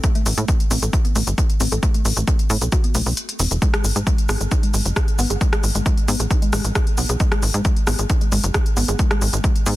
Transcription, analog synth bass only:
0.26 A1
0.38 A2
0.71 A1
0.82 A1
1.16 A1
1.27 G1
1.60 A1
1.72 A1
2.05 A1
2.17 A1
2.50 A2
2.62 B1
2.95 B1
3.06 B1
3.40 E1
3.51 E1
3.84 G#1
3.96 G#2
4.29 G#1
4.41 G#1
4.74 G#1
4.85 F#1
5.19 G#1
5.30 G#1
5.64 G#1
5.75 G#1
6.08 G#2
6.20 A1
6.53 A1
6.65 A1
6.98 B1
7.09 B1
7.43 G#1
7.54 G#2
7.87 G#1
7.99 G#1
8.32 G#1
8.44 F#1
8.77 G#1
8.88 G#1
9.22 G#1
9.33 G#1
9.66 G#2

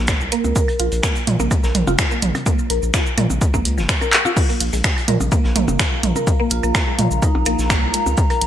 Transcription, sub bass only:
Already playing: A#1
0.21 C2
0.44 C#2
0.80 A#1
0.92 A#1
1.27 A#2
1.40 A#1
1.63 A#1
1.75 A#1
1.87 F1
2.22 A#1
2.70 A#1
2.82 A#1
3.18 A#2
3.30 A#1
3.54 A#1
3.65 C#2
3.78 F1
4.60 A#1
4.73 A#1
5.08 A#2
5.21 A#1
5.44 A#1
5.56 A#1
5.68 F1
6.03 A#1
6.51 A#1
6.63 A#1
6.99 A#2
7.11 A#1
7.35 A#1
7.46 A#1
7.59 A#1
7.83 C2
8.06 C#2
8.41 A#1

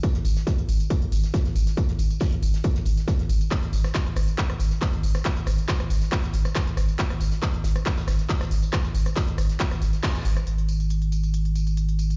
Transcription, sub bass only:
0.15 G#1
0.25 G#1
0.58 G#1
0.69 G#1
1.02 G#1
1.12 G#1
1.45 G#1
1.56 G#1
1.89 G#1
1.99 G#1
2.32 G#1
2.42 G#1
2.76 G#1
2.86 G#1
3.19 G#1
3.29 G#1
3.63 G#1
3.73 G#1
4.06 G#1
4.16 G#1
4.50 G#1
4.60 G#1
4.93 G#1
5.03 G#1
5.36 G#1
5.47 G#1
5.80 G#1
5.90 G#1
6.23 G#1
6.34 G#1
6.67 G#1
6.77 G#1
7.10 G#1
7.21 G#1
7.54 G#1
7.64 G#1
7.97 G#1
8.08 G#1
8.41 G#1
8.51 G#1
8.84 G#1
8.95 G#1
9.28 G#1
9.38 G#1
9.71 G#1
9.82 G#1
10.15 G#1
10.25 G#1
10.47 G#1

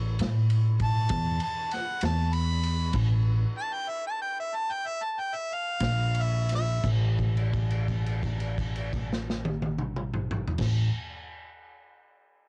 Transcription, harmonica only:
0.84 A5
1.43 A5
1.74 F#5
2.05 A5
2.33 B5
3.59 A5
3.73 G5
3.88 E5
4.07 A5
4.22 G5
4.40 E5
4.55 A5
4.72 G5
4.86 E5
5.03 A5
5.20 G5
5.35 E5
5.54 F5
6.22 E5
6.55 E5

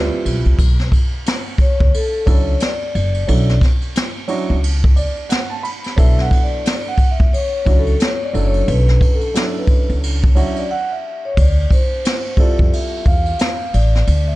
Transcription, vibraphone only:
1.61 C#5
1.95 A4
2.28 C#5
2.61 D5
5.98 E5
6.21 F#5
6.43 D5
6.88 F#5
7.11 E5
7.33 C#5
7.79 A4
8.02 C#5
8.24 D5
8.46 C#5
8.69 B4
9.13 A4
9.59 B4
10.37 E5
10.58 D5
10.71 F#5
10.92 E5
11.25 C#5
11.39 D5
11.73 C5
12.40 D5
12.74 E5
13.07 F5
13.74 D5
14.28 E5

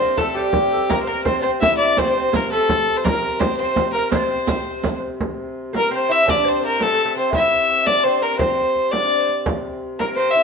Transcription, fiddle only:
Already playing: C5
0.18 A4
0.28 A4
0.34 G4
0.89 A#4
1.02 C5
1.08 A#4
1.24 C5
1.42 C5
1.60 E5
1.77 D5
1.98 C5
2.35 A#4
2.52 A4
2.97 C5
3.04 A#4
3.39 C5
3.57 C5
3.93 A#4
4.11 C5
5.76 A#4
5.93 C5
6.11 E5
6.30 D5
6.48 C5
6.65 A#4
6.82 A4
7.17 C5
7.36 E5
7.86 D5
8.03 C5
8.22 A#4
8.38 C5
8.91 D5
9.99 A#4
10.15 C5
10.31 E5

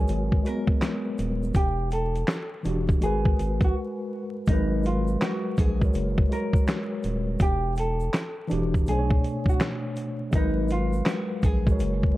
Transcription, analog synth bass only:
0.09 G#1
1.19 D#1
1.56 E1
2.65 E1
3.02 G#1
3.39 G#1
3.61 A#1
4.48 G#1
5.58 A#1
5.95 F#1
7.05 D#1
7.41 E1
8.52 E1
8.87 B1
10.33 G#1
11.44 A#1
11.81 F#1

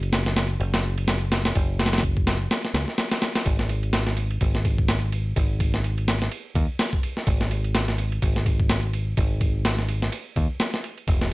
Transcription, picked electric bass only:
Already playing: F#1
0.60 F#1
1.56 F#1
2.74 C#2
3.46 G#1
4.41 G#1
5.36 G#1
6.55 D#2
7.27 G#1
8.22 G#1
9.18 G#1
10.36 D#2
11.08 E1

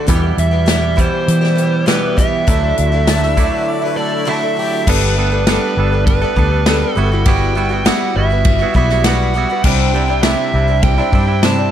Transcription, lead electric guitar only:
0.39 E5
0.70 E5
0.99 C5
1.87 B4
2.17 E5
3.97 D5
4.29 E5
4.90 B4
5.47 B4
6.06 B4
6.90 A4
7.26 G5
7.86 F#5
8.17 E5
8.76 E5
9.05 F#5
9.64 G5
10.23 E5
10.83 G5
11.45 A5

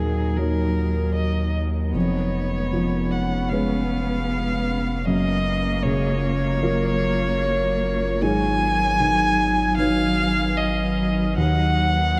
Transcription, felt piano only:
Already playing: D#2 A#2
0.37 F#3 D#4 A#4
1.95 F2
2.73 F3
3.51 G#3 C#4 B4
5.07 F#2
5.84 C#3
6.62 F#3 F4 A#4
8.22 G#2
9.00 D#3
9.78 F#3 D#4 B4
11.37 D#2

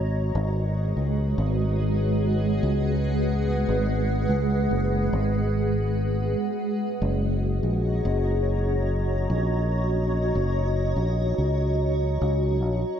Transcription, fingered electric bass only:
Already playing: G#1
0.35 G#1
0.97 C#2
1.38 G#1
2.63 C#2
3.69 G#1
4.29 C#2
4.71 F#1
5.13 G#1
7.02 F#1
7.63 A#1
8.05 F#1
9.30 A#1
10.35 F#1
10.96 A#1
11.38 C#2
12.21 C#2
12.63 A#1

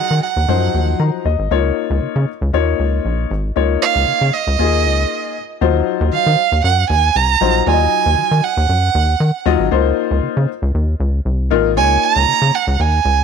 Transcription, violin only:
Already playing: F#5
0.23 F#5
3.82 F5
4.33 D#5
6.13 F5
6.65 F#5
6.90 G#5
7.16 A#5
7.67 G#5
8.44 F#5
11.77 G#5
12.03 A#5
12.55 F#5
12.80 G#5

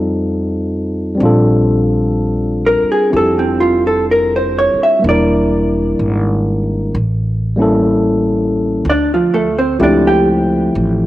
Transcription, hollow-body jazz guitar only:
2.66 A#4
2.92 G#4
3.17 A4
3.39 C4
3.60 F4
3.87 A4
4.11 A#4
4.36 C5
4.59 C#5
4.83 E5
5.09 D5
8.89 D4 D5
9.14 F3 F4
9.34 A3 A4
9.58 C4 C5
9.83 D4 D5
10.07 G4 G5

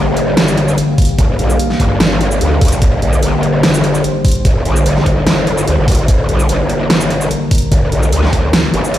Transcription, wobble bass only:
Already playing: G1
1.19 F1
1.39 A#1
1.80 G2
2.00 G#1
2.41 D2
2.82 G1
3.02 A#1
3.23 G1
4.45 F1
4.65 A#1
4.86 G1
5.67 D2
5.78 G#1
6.08 G1
6.29 A#1
6.49 G1
7.72 F1
7.92 A#1
8.12 D2
8.74 G1

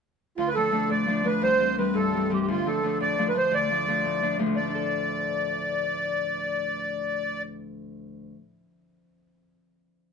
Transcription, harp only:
0.38 D2
0.56 F3 A3 D4
0.71 F3 A3 D4
0.90 A2
1.06 F3 A3 D4
1.24 F3 A3 D4
1.42 C2
1.59 E3 G3 C4
1.78 E3 G3 C4
1.94 G2
2.12 E3 G3
2.17 C4
2.30 E3 G3 C4
2.48 D2
2.66 F3 A3 D4
2.83 F3 A3 D4
3.00 A2
3.18 F3 A3 D4
3.34 F3 A3 D4
3.51 D2
3.70 F3 A3 D4
3.88 F3 A3 D4
4.05 A2
4.22 F3 A3 D4
4.39 D2 F3 A3 D4
4.46 A2
4.54 F3
4.61 A3
4.68 D4
4.75 A4

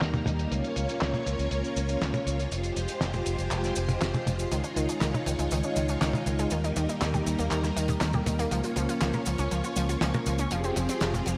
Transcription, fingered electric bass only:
0.02 D#2
0.26 D#2
0.51 C#2
0.76 C#2
1.01 C#2
1.26 C#2
1.39 C#2
1.51 C#2
1.76 C#2
2.01 C#2
2.26 C#2
2.51 F1
2.76 F1
3.02 F1
3.27 F1
3.39 F1
3.51 F1
3.76 F1
4.01 F1
4.26 F1
4.51 C#2
4.76 C#2
5.01 C#2
5.26 C#2
5.39 C#2
5.51 C#2
5.76 C#2
6.01 C#2
6.26 C#2
6.51 D#2
6.76 D#2
7.01 D#2
7.26 D#2
7.39 D#2
7.51 D#2
7.76 D#2
8.01 D#2
8.26 D#2
8.51 C#2
8.76 C#2
9.01 C#2
9.27 C#2
9.39 C#2
9.51 C#2
9.76 C#2
10.01 C#2
10.27 C#2
10.52 F1
10.76 F1
11.02 F1
11.27 F1

